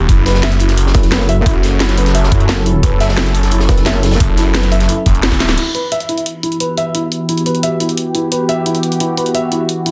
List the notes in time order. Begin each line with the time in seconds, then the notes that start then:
0.09 F#1 F#3 C#4 E4 F#4 A4, kick, closed hi-hat
0.26 B4, snare, closed hi-hat
0.35 snare
0.43 E5, snare, closed hi-hat
0.52 closed hi-hat
0.59 E4, closed hi-hat
0.69 snare, closed hi-hat
0.78 closed hi-hat
0.87 snare
0.94 F#1 E4, kick, snare, closed hi-hat
1.03 snare, closed hi-hat
1.12 B4, snare, closed hi-hat
1.29 E5, closed hi-hat
1.46 F#1 E4, kick, closed hi-hat
1.63 snare, closed hi-hat
1.80 E4, snare, closed hi-hat
1.89 snare, closed hi-hat
1.98 B4, closed hi-hat
2.06 snare, closed hi-hat
2.15 E5, closed hi-hat
2.23 snare
2.32 F#2 E4, kick, closed hi-hat
2.40 closed hi-hat
2.49 F#1, snare, closed hi-hat
2.66 E4, closed hi-hat
2.83 F#1 E4 B4, kick, closed hi-hat
3.00 E5, snare, closed hi-hat
3.09 snare
3.17 E4, snare, closed hi-hat
3.26 closed hi-hat
3.34 closed hi-hat
3.43 snare, closed hi-hat
3.51 E4, closed hi-hat
3.60 snare
3.69 F#1 B4, kick, snare, closed hi-hat
3.77 snare, closed hi-hat
3.86 E5, snare, closed hi-hat
4.03 E4, snare, closed hi-hat
4.11 snare, closed hi-hat
4.20 F#1, kick, closed hi-hat
4.37 F#1 E4, snare, closed hi-hat
4.55 B4, snare, closed hi-hat
4.63 snare, closed hi-hat
4.72 E5, closed hi-hat
4.80 snare, closed hi-hat
4.89 E4, closed hi-hat
5.06 F#1, kick, closed hi-hat
5.15 closed hi-hat
5.23 E4, snare, closed hi-hat
5.31 kick, snare, closed hi-hat
5.40 E5, snare, closed hi-hat
5.48 snare, closed hi-hat
5.58 E3 B3 E4 F#4 G4, closed hi-hat, crash
5.75 B4, closed hi-hat
5.92 E5, closed hi-hat
6.00 closed hi-hat
6.09 E4, closed hi-hat
6.18 closed hi-hat
6.26 closed hi-hat
6.43 E4, closed hi-hat
6.52 closed hi-hat
6.60 B4, closed hi-hat
6.77 E5, closed hi-hat
6.95 E4, closed hi-hat
7.12 closed hi-hat
7.29 E4, closed hi-hat
7.37 closed hi-hat
7.46 B4, closed hi-hat
7.55 closed hi-hat
7.63 E5, closed hi-hat
7.80 E4, closed hi-hat
7.89 closed hi-hat
7.97 closed hi-hat
8.15 E4, closed hi-hat
8.32 B4, closed hi-hat
8.49 E5, closed hi-hat
8.66 E4, closed hi-hat
8.75 closed hi-hat
8.83 closed hi-hat
8.92 closed hi-hat
9.00 E4, closed hi-hat
9.17 B4, closed hi-hat
9.26 closed hi-hat
9.35 E5, closed hi-hat
9.52 E4, closed hi-hat
9.69 closed hi-hat
9.86 E4, closed hi-hat